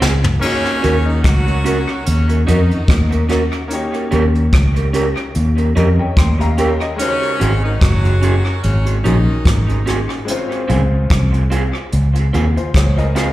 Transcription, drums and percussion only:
0.02 snare medium
0.24 floor tom medium
0.42 crash medium
0.66 closed hi-hat soft
0.83 closed hi-hat medium
1.24 kick loud
1.24 cross-stick loud
1.24 closed hi-hat medium
1.48 closed hi-hat soft
1.66 closed hi-hat medium
1.89 closed hi-hat soft
2.06 closed hi-hat loud
2.29 closed hi-hat medium
2.48 closed hi-hat medium
2.71 closed hi-hat soft
2.88 kick loud
2.88 cross-stick loud
2.88 closed hi-hat loud
3.12 closed hi-hat medium
3.29 cross-stick medium
3.29 closed hi-hat medium
3.52 closed hi-hat soft
3.70 closed hi-hat loud
3.94 closed hi-hat soft
4.12 closed hi-hat medium
4.35 closed hi-hat soft
4.53 kick loud
4.53 cross-stick loud
4.53 closed hi-hat medium
4.76 closed hi-hat soft
4.94 closed hi-hat medium
5.17 closed hi-hat soft
5.35 closed hi-hat medium
5.58 closed hi-hat soft
5.77 closed hi-hat medium
6.17 kick loud
6.17 cross-stick loud
6.17 closed hi-hat loud
6.41 closed hi-hat soft
6.58 closed hi-hat medium
6.81 closed hi-hat soft
6.99 closed hi-hat medium
7.23 closed hi-hat soft
7.41 closed hi-hat medium
7.81 kick loud
7.81 cross-stick loud
7.81 closed hi-hat medium
8.05 closed hi-hat soft
8.23 closed hi-hat medium
8.46 closed hi-hat soft
8.64 closed hi-hat medium
8.86 closed hi-hat medium
9.05 closed hi-hat medium
9.45 kick loud
9.45 cross-stick loud
9.45 closed hi-hat loud
9.69 closed hi-hat medium
9.87 cross-stick medium
9.87 closed hi-hat medium
10.10 closed hi-hat soft
10.28 closed hi-hat loud
10.52 closed hi-hat soft
10.70 closed hi-hat medium
11.10 kick loud
11.10 cross-stick loud
11.10 closed hi-hat loud
11.34 closed hi-hat soft
11.51 closed hi-hat medium
11.75 closed hi-hat soft
11.92 closed hi-hat medium
12.15 closed hi-hat medium
12.34 closed hi-hat medium
12.57 closed hi-hat soft
12.74 kick loud
12.74 cross-stick loud
12.74 closed hi-hat medium
12.98 closed hi-hat soft
13.16 cross-stick medium
13.16 closed hi-hat medium

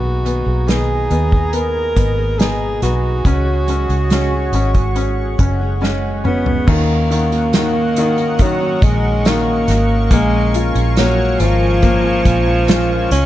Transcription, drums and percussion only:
0.26 closed hi-hat medium
0.68 snare medium
0.68 closed hi-hat medium
1.11 closed hi-hat medium
1.32 kick medium
1.53 closed hi-hat medium
1.96 kick medium
1.96 closed hi-hat medium
2.40 snare medium
2.40 closed hi-hat medium
2.82 snare soft
2.82 closed hi-hat medium
3.25 kick loud
3.25 closed hi-hat medium
3.68 closed hi-hat medium
3.90 closed hi-hat soft
4.10 snare medium
4.10 closed hi-hat medium
4.53 closed hi-hat medium
4.74 kick medium
4.74 closed hi-hat soft
4.96 closed hi-hat medium
5.39 kick medium
5.39 closed hi-hat medium
5.83 snare soft
6.25 mid tom medium
6.46 floor tom medium
6.68 kick loud
6.68 crash loud
7.11 closed hi-hat medium
7.32 closed hi-hat medium
7.53 snare loud
7.53 closed hi-hat medium
7.53 tambourine loud
7.96 closed hi-hat medium
8.18 closed hi-hat soft
8.39 kick medium
8.39 closed hi-hat medium
8.82 kick loud
8.82 closed hi-hat medium
9.25 snare loud
9.25 closed hi-hat medium
9.25 tambourine medium
9.68 snare soft
9.68 closed hi-hat medium
10.11 kick loud
10.11 closed hi-hat loud
10.54 closed hi-hat medium
10.75 closed hi-hat medium
10.96 snare loud
10.96 closed hi-hat medium
10.96 tambourine medium
11.40 closed hi-hat medium
11.82 kick medium
11.82 closed hi-hat medium
12.25 kick medium
12.25 closed hi-hat medium
12.68 snare loud
12.68 closed hi-hat loud
12.68 tambourine medium
13.11 snare soft
13.11 closed hi-hat medium

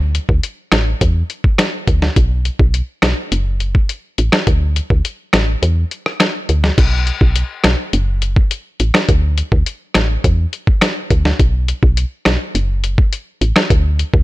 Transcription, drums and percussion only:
0.15 closed hi-hat medium
0.29 kick medium
0.43 closed hi-hat medium
0.72 cross-stick loud
0.72 snare loud
0.72 closed hi-hat medium
1.01 kick medium
1.01 closed hi-hat medium
1.30 closed hi-hat soft
1.44 kick loud
1.58 cross-stick medium
1.58 snare loud
1.58 closed hi-hat medium
1.87 kick medium
1.87 closed hi-hat medium
2.02 snare medium
2.16 kick loud
2.16 closed hi-hat medium
2.45 closed hi-hat medium
2.59 kick medium
2.74 closed hi-hat medium
3.02 cross-stick medium
3.02 snare loud
3.02 closed hi-hat medium
3.32 closed hi-hat medium
3.60 closed hi-hat soft
3.75 kick loud
3.89 closed hi-hat medium
4.18 closed hi-hat medium
4.32 cross-stick medium
4.32 snare loud
4.47 kick loud
4.47 closed hi-hat medium
4.76 closed hi-hat medium
4.90 kick medium
5.05 closed hi-hat medium
5.33 cross-stick medium
5.33 snare loud
5.33 closed hi-hat medium
5.63 closed hi-hat medium
5.91 closed hi-hat soft
6.06 cross-stick loud
6.20 cross-stick medium
6.20 snare loud
6.20 closed hi-hat medium
6.49 closed hi-hat medium
6.64 snare medium
6.78 kick loud
6.78 closed hi-hat medium
6.78 crash medium
7.07 closed hi-hat medium
7.21 kick medium
7.36 closed hi-hat medium
7.64 cross-stick medium
7.64 snare loud
7.64 closed hi-hat medium
7.93 closed hi-hat medium
8.22 closed hi-hat soft
8.36 kick loud
8.51 closed hi-hat medium
8.80 closed hi-hat medium
8.94 cross-stick medium
8.94 snare loud
9.09 kick loud
9.09 closed hi-hat medium
9.38 closed hi-hat medium
9.52 kick medium
9.66 closed hi-hat medium
9.94 cross-stick loud
9.94 snare loud
9.94 closed hi-hat medium
10.24 kick loud
10.24 closed hi-hat medium
10.53 closed hi-hat medium
10.67 kick loud
10.81 cross-stick medium
10.81 snare loud
10.81 closed hi-hat medium
11.10 kick medium
11.10 closed hi-hat medium
11.25 snare medium
11.39 kick loud
11.39 closed hi-hat medium
11.68 closed hi-hat medium
11.83 kick medium
11.97 closed hi-hat medium
12.25 cross-stick medium
12.25 snare loud
12.25 closed hi-hat medium
12.55 closed hi-hat medium
12.84 closed hi-hat medium
12.98 kick loud
13.13 closed hi-hat medium
13.41 closed hi-hat medium
13.56 cross-stick medium
13.56 snare loud
13.70 kick loud
13.70 closed hi-hat medium
13.99 closed hi-hat medium
14.14 kick medium

